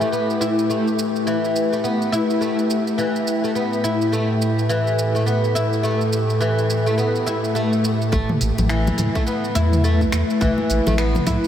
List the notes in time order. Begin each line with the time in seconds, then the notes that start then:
Already playing: A3 E4 G4 A4
0.01 A3, shaker
0.12 B3, shaker
0.26 B4
0.30 shaker
0.41 E4, shaker
0.59 shaker
0.70 A3, shaker
0.88 shaker
0.99 shaker
1.16 shaker
1.27 E3, shaker
1.45 shaker
1.56 shaker
1.72 A3, shaker
1.84 B3, shaker
2.02 shaker
2.12 E4, shaker
2.30 shaker
2.41 A3, shaker
2.59 shaker
2.70 shaker
2.87 shaker
2.98 E3, shaker
3.16 shaker
3.27 shaker
3.44 A3, shaker
3.55 A2 B3, shaker
3.73 shaker
3.84 E4, shaker
3.98 G4, shaker
4.04 A4
4.12 A3, shaker
4.42 shaker
4.59 shaker
4.69 E3, shaker
4.87 shaker
4.99 shaker
5.15 A3, shaker
5.26 B3, shaker
5.44 shaker
5.55 E4, shaker
5.73 shaker
5.83 A3, shaker
6.01 shaker
6.13 shaker
6.30 shaker
6.41 E3, shaker
6.58 shaker
6.70 shaker
6.86 A3, shaker
6.98 B3, swell, shaker
7.16 shaker
7.26 E4, shaker
7.44 shaker
7.55 A3, shaker
7.73 shaker
7.84 shaker
8.02 shaker
8.12 A1 A3, kick, shaker
8.29 mid tom, high conga
8.41 A1 E4 B4, open hi-hat, shaker
8.58 A1, muted conga, low conga, shaker
8.69 E3, finger snap, shaker
8.87 high conga, low conga, shaker
8.98 A2, mid tom, open hi-hat, low conga, shaker
9.15 A3, kick, shaker
9.27 B3, shaker
9.44 shaker
9.55 E2 E4, open hi-hat, muted conga, shaker
9.72 mid tom, shaker
9.84 A3, shaker
10.01 kick, high conga, shaker
10.12 E2, finger snap, open hi-hat, muted conga, shaker
10.30 shaker
10.41 A1 E3, kick, mid tom, shaker
10.58 high conga
10.70 A1, open hi-hat, shaker
10.87 A1 A3, muted conga, low conga, shaker
10.98 B3, finger snap, shaker
11.15 mid tom, high conga, low conga, shaker
11.26 A2 E4, kick, open hi-hat, low conga, shaker
11.44 shaker